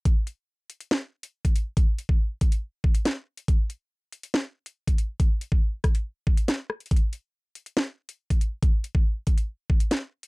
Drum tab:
HH |x---x-------x-x-------x---x-x---|x---x-------x-x-------x-x-----x-|x---x-------x-x-------x---x-x---|x---x-------x-x-------x-x-----xx|
SD |----------------o---------------|------------------------o-------|----------------o---------------|------------r-----------o---r---|
BD |o-------------------------o-----|o-----o-----o-------o-----------|o-------------------------o-----|o-----o-----o-------o-----------|

HH |xx--x-------x-x-------x---x-x---|x---x-------x-x-------x-x-----x-|
SD |----------------o---------------|------------------------o-------|
BD |o-------------------------o-----|o-----o-----o-------o-----------|